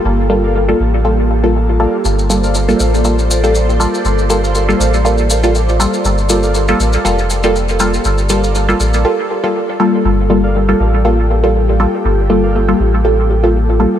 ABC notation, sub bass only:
X:1
M:4/4
L:1/8
Q:"Swing 16ths" 1/4=120
K:Gm
V:1 name="Sub bass" clef=bass
G,,,3 A,,,4 z | G,,,3 A,,,4 z | G,,,3 A,,,4 z | G,,,3 A,,, F,,,4 |
G,,,3 A,,, z4 | G,,,3 A,,,4 z | G,,,3 A,,,4 z |]